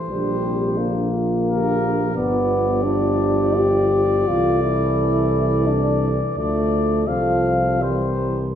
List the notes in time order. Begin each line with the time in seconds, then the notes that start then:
Already playing: E3 C5
0.09 A#1 D3 G3 G4
0.45 C3
0.77 D3 A#3 D4
1.13 F4
1.48 D3 G4 A#4
2.15 G1 F3 B3 G4 D5
2.85 D4
3.58 G4
4.28 C2 E3 F4 A4
4.62 E4
5.67 D4
6.37 D2 F3 A3 A4 D5
7.07 C2 F3 A4 F5
7.80 E3 G3 A#4 C5